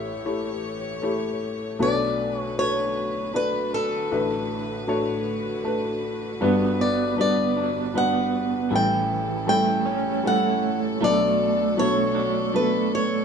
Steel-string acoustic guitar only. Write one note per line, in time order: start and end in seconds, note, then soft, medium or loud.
0.00 1.40 E5 medium
1.82 2.37 D5 medium
2.37 2.59 C#5 medium
2.59 3.31 C#5 medium
3.36 3.74 B4 medium
3.74 6.00 A4 medium
6.81 7.17 D5 medium
7.21 7.97 D5 medium
7.98 8.75 F#5 medium
8.76 9.48 G5 medium
9.49 10.27 G5 medium
10.27 10.80 F#5 medium
11.04 11.79 D5 medium
11.79 12.51 C#5 medium
12.56 12.91 B4 medium
12.95 13.25 C#5 medium